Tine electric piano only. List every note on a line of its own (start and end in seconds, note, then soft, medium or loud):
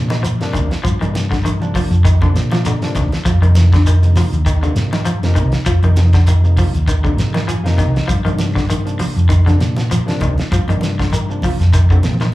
0.40 0.68 C3 medium
0.40 0.68 F3 medium
0.40 0.69 A#3 medium
0.40 0.69 D4 loud
1.01 1.28 C3 medium
1.01 1.28 F3 medium
1.01 1.29 A#3 medium
1.01 1.29 D4 medium
1.60 1.88 C3 medium
1.60 1.88 F3 medium
1.60 1.89 A#3 medium
1.60 1.89 D4 medium
2.20 2.48 C3 medium
2.20 2.49 F3 medium
2.20 2.49 A#3 medium
2.20 2.50 D4 medium
2.81 3.09 C3 medium
2.81 3.09 F3 medium
2.81 3.10 A#3 medium
2.81 3.10 D4 loud
3.42 3.69 C3 medium
3.42 3.70 F3 medium
3.42 3.70 A#3 medium
3.42 3.70 D#4 medium
4.02 4.30 C3 medium
4.02 4.30 F3 medium
4.02 4.30 A#3 medium
4.02 4.31 D#4 medium
4.62 4.90 C3 medium
4.62 4.90 F3 medium
4.62 4.91 A#3 medium
4.62 4.91 D#4 medium
5.23 5.51 C3 medium
5.23 5.51 F3 medium
5.23 5.51 A#3 medium
5.23 5.52 D#4 loud
5.84 6.11 C3 medium
5.84 6.11 F3 medium
5.84 6.12 A#3 medium
5.84 6.12 D#4 medium
6.43 6.71 C3 medium
6.43 6.72 F3 medium
6.43 6.72 A#3 medium
6.43 6.72 D#4 medium
7.03 7.32 C3 medium
7.03 7.32 F3 medium
7.03 7.32 A#3 medium
7.03 7.33 D#4 medium
7.48 7.64 G#5 medium
7.64 7.92 C3 medium
7.64 7.92 F3 medium
7.64 7.93 A#3 medium
7.64 7.93 D#4 loud
7.64 7.77 F5 medium
7.79 8.07 D#5 medium
8.24 8.53 C3 medium
8.24 8.53 F3 medium
8.24 8.54 A#3 medium
8.24 8.54 D4 medium
8.84 9.13 C3 medium
8.84 9.13 F3 medium
8.84 9.14 A#3 medium
8.84 9.14 D4 medium
9.45 9.74 C3 medium
9.45 9.75 F3 medium
9.45 9.75 A#3 medium
9.45 9.75 D4 medium
10.06 10.35 C3 medium
10.06 10.35 F3 medium
10.06 10.35 A#3 medium
10.06 10.36 D4 loud
10.68 10.96 C3 medium
10.68 10.96 F3 medium
10.68 10.97 A#3 medium
10.68 10.97 D4 medium
11.29 11.57 C3 medium
11.29 11.57 F3 medium
11.29 11.58 A#3 medium
11.29 11.58 D4 medium
11.91 12.18 C3 medium
11.91 12.19 F3 medium
11.91 12.19 A#3 medium
11.91 12.19 C4 medium